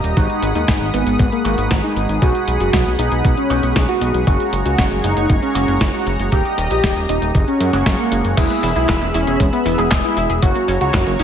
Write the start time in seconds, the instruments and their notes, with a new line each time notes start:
Already playing: clean electric guitar G3 A#3 D#4 G4, analog synth pad G4 D#5 A#5 D#6
0.04 analog synth bass D#1, closed hi-hat
0.16 analog synth bass G#1, clean electric guitar G#2 G#3 B3 D#4 F#4, analog synth lead D#4, analog synth pad G#4 F#5 B5, kick, closed hi-hat
0.30 closed hi-hat
0.42 analog synth bass G#1, closed hi-hat
0.55 analog synth bass D#2, analog synth lead D#4, closed hi-hat
0.68 analog synth bass G#1, kick, snare, closed hi-hat
0.81 analog synth bass G#1, closed hi-hat
0.94 analog synth bass G#1, analog synth lead B3, closed hi-hat
1.06 analog synth bass G#1, closed hi-hat
1.19 analog synth bass G#1, kick, closed hi-hat
1.32 analog synth lead A#3, closed hi-hat
1.45 analog synth bass G#1, clean electric guitar G#2 G#3 B3 D#4 F#4, closed hi-hat
1.58 analog synth bass G#1, closed hi-hat
1.71 analog synth bass G#1, kick, snare, closed hi-hat
1.84 analog synth lead D#4, closed hi-hat
1.96 analog synth bass G#1, closed hi-hat
2.09 analog synth bass G#1, closed hi-hat
2.22 analog synth bass B1, clean electric guitar B2 G#3 B3 D#4 F#4, analog synth lead F#4, analog synth pad F#5 B5, kick, closed hi-hat
2.35 closed hi-hat
2.48 analog synth bass B1, closed hi-hat
2.60 analog synth bass F#1, analog synth lead F#4, closed hi-hat
2.73 analog synth bass B1, kick, snare, closed hi-hat
2.86 analog synth bass B1, closed hi-hat
2.99 analog synth bass B1, analog synth lead D#4, closed hi-hat
3.12 analog synth bass B1, closed hi-hat
3.25 analog synth bass B1, kick, closed hi-hat
3.37 analog synth lead C#4, closed hi-hat
3.50 analog synth bass B1, clean electric guitar B2 G#3 B3 D#4 F#4, closed hi-hat
3.63 analog synth bass B1, closed hi-hat
3.76 analog synth bass B1, kick, snare, closed hi-hat
3.88 analog synth lead F#4, closed hi-hat
4.01 analog synth bass B1, closed hi-hat
4.14 analog synth bass B1, closed hi-hat
4.27 analog synth bass F#1, clean electric guitar G#3 A#3 C#4 F#4, analog synth lead F#4, analog synth pad A#5 C#6, kick, closed hi-hat
4.40 closed hi-hat
4.53 analog synth bass F#1, closed hi-hat
4.65 analog synth bass C#2, analog synth lead F#4, closed hi-hat
4.78 analog synth bass F#1, kick, snare, closed hi-hat
4.91 analog synth bass F#1, closed hi-hat
5.04 analog synth bass F#1, analog synth lead D#4, closed hi-hat
5.17 analog synth bass F#1, closed hi-hat
5.30 analog synth bass F#1, kick, closed hi-hat
5.42 analog synth lead C#4, closed hi-hat
5.55 analog synth bass F#1, clean electric guitar G#3 A#3 C#4 F#4, closed hi-hat
5.68 analog synth bass F#1, closed hi-hat
5.81 analog synth bass F#1, kick, snare, closed hi-hat
5.94 analog synth lead F#4, closed hi-hat
6.07 analog synth bass F#1, closed hi-hat
6.19 analog synth bass F#1, closed hi-hat
6.32 analog synth bass D#1, clean electric guitar G3 A#3 D#4 G4, analog synth pad G4 D#5 D#6, analog synth lead G4, kick, closed hi-hat
6.45 closed hi-hat
6.58 analog synth bass D#1, closed hi-hat
6.71 analog synth bass A#1, analog synth lead G4, closed hi-hat
6.84 analog synth bass D#1, kick, snare, closed hi-hat
6.96 analog synth bass D#1, closed hi-hat
7.09 analog synth bass D#1, analog synth lead D#4, closed hi-hat
7.22 analog synth bass D#1, closed hi-hat
7.35 analog synth bass F#1, analog synth pad G#4 F#5 C#6, kick, closed hi-hat
7.48 analog synth lead C#4, closed hi-hat
7.60 analog synth bass F#2, closed hi-hat
7.73 analog synth bass F#1, clean electric guitar G#3 A#3 C#4 F#4, snare, closed hi-hat
7.86 analog synth bass F#1, clean electric guitar G#3 A#3 C#4 F#4, kick, snare, closed hi-hat
7.99 analog synth lead A#3, closed hi-hat
8.12 analog synth bass F#1, closed hi-hat
8.25 analog synth bass F#1, closed hi-hat
8.37 analog synth bass E1, clean electric guitar G#3 B3 E4 G#4, synth arpeggio sound G#3, analog synth lead E4, analog synth pad G#4 E5 B5 E6, kick, closed hi-hat, crash
8.50 synth arpeggio sound B3, closed hi-hat
8.63 analog synth bass E1, synth arpeggio sound E4, open hi-hat
8.76 analog synth bass B1, analog synth lead E4, synth arpeggio sound G#4, closed hi-hat
8.89 analog synth bass E1, synth arpeggio sound G#3, kick, snare, clap, closed hi-hat
9.01 analog synth bass E1, synth arpeggio sound B3, closed hi-hat
9.14 analog synth bass E1, analog synth lead C#4, synth arpeggio sound E4, open hi-hat
9.27 analog synth bass E1, synth arpeggio sound G#4, closed hi-hat
9.40 analog synth bass E1, synth arpeggio sound G#3, kick, closed hi-hat
9.53 analog synth lead B3, synth arpeggio sound B3, closed hi-hat
9.66 analog synth bass E1, synth arpeggio sound E4, open hi-hat
9.78 analog synth bass E1, clean electric guitar G#3 B3 E4 G#4, synth arpeggio sound G#4, closed hi-hat
9.91 analog synth bass E1, clean electric guitar G#3 B3 E4 G#4, synth arpeggio sound G#3, kick, snare, clap, closed hi-hat
10.04 synth arpeggio sound B3, analog synth lead E4, closed hi-hat
10.17 analog synth bass E1, synth arpeggio sound E4, open hi-hat
10.30 analog synth bass E1, synth arpeggio sound G#4, closed hi-hat
10.42 analog synth bass F#1, clean electric guitar F#3 A#3 C#4 F#4, synth arpeggio sound F#3, analog synth lead F#4, analog synth pad F#4 C#5 A#5 C#6, kick, closed hi-hat
10.55 synth arpeggio sound A#3, closed hi-hat
10.68 analog synth bass F#1, synth arpeggio sound C#4, open hi-hat
10.81 analog synth bass C#2, synth arpeggio sound F#4, analog synth lead F#4, closed hi-hat
10.94 analog synth bass F#1, synth arpeggio sound F#3, kick, snare, clap, closed hi-hat
11.07 analog synth bass F#1, synth arpeggio sound A#3, closed hi-hat
11.19 analog synth bass F#1, synth arpeggio sound C#4, analog synth lead D#4, open hi-hat